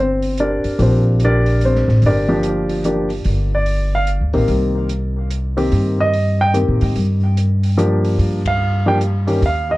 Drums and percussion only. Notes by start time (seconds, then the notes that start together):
0.23 open hi-hat
0.38 closed hi-hat
0.64 open hi-hat
0.79 open hi-hat
1.20 closed hi-hat
1.46 open hi-hat
1.61 open hi-hat
1.75 snare
1.88 snare
2.02 open hi-hat
2.43 closed hi-hat
2.70 open hi-hat
2.84 closed hi-hat
3.10 open hi-hat
3.24 open hi-hat
3.66 open hi-hat
4.07 closed hi-hat
4.33 open hi-hat
4.48 open hi-hat
4.89 closed hi-hat
5.30 closed hi-hat
5.58 open hi-hat
5.72 open hi-hat
6.14 open hi-hat
6.54 closed hi-hat
6.81 open hi-hat
6.96 open hi-hat
7.37 closed hi-hat
7.63 open hi-hat
7.78 closed hi-hat
8.04 open hi-hat
8.19 open hi-hat
8.46 kick, ride
9.01 closed hi-hat
9.28 open hi-hat
9.43 open hi-hat